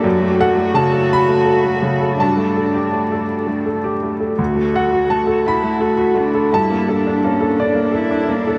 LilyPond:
<<
  \new Staff \with { instrumentName = "Grand piano" } { \time 6/8 \key g \lydian \tempo 4. = 56 << { r8 fis''8 a''8 b''4. | a''4. r4. | r8 fis''8 a''8 b''4. | a''4. d''4. | } \\ { fis,16 a16 a'16 a16 cis16 a'8 a16 a'16 a16 cis16 a'16 | g,16 a16 a'16 g'16 a16 a'8 a16 a'16 g'16 a16 a'16 | d,16 a16 a'16 fis'16 a16 a'8 a16 a'16 fis'16 a16 a'16 | g,16 bes16 a'16 d'16 bes16 a'8 bes16 a'16 d'16 bes16 a'16 | } >> }
  \new Staff \with { instrumentName = "Cello" } { \time 6/8 \key g \lydian fis'2. | d'2~ d'16 r8. | fis'4. e'8 fis'8 d'8 | e'8 d'8 cis'8 d'8 e'8 d'8 | }
>>